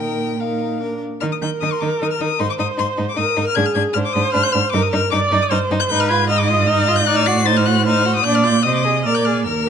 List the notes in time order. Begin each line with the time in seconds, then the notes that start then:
Already playing: A#2 D#4 A#4 G5
0.39 D#4 A#4 F5
0.80 D4 A#4
1.21 D#3 D#4 A#4 F6
1.32 D#6
1.42 D#3 D#4 G6
1.61 D#3 D#4 D#6
1.72 C6
1.81 D#3 D#4 D6
2.01 D#3 D#4 D#6
2.11 F6
2.20 D#3 D#4 D#6
2.39 G#2 D#4 C5 C6
2.50 D6
2.59 G#2 D#4 D#6
2.77 G#2 D#4 C6
2.98 G#2 D#4
3.09 D6
3.16 G#2 D#4 A#4 D#6
3.37 G#2 D#4
3.47 F6
3.55 G#2 D4 G#4 G#6
3.66 F6
3.75 G#2 D4 G#6
3.93 G#2 D4 C5 F6
4.05 D6
4.13 G#2 D4 D#6
4.32 G#2 D4 F6
4.44 G6
4.52 G#2 D4 F6
4.72 G2 D#4 A#4 D6
4.82 D#6
4.92 G2 D#4 F6
5.11 G2 D#4 D5 D6
5.31 G2 D#4
5.42 D#6
5.50 G2 D#4 C5 F6
5.70 G2 D#4
5.80 G6
5.90 G#2 D#4 B4 G6
6.00 F6
6.09 F4 G#6
6.29 D#4 D#5 F6
6.39 D6
6.47 F4 D#6
6.67 D#4 F6
6.88 F4
6.96 G6
7.06 A2 D#4 D5 F#6
7.16 F6
7.26 F#4 C7
7.46 D#4 C5 A6
7.57 F6
7.66 F#4 F#6
7.85 D#4 C5 F6
8.05 F#4
8.15 D#6
8.24 A#2 D4 D5 G6
8.35 F6
8.44 F4 G6
8.63 C3 C5 D#5 D#6
8.74 D6
8.83 G#4 D#6
9.04 A#2 A#4 D5 F6
9.15 G6
9.25 G#4 F6
9.45 D#2 A#4 F6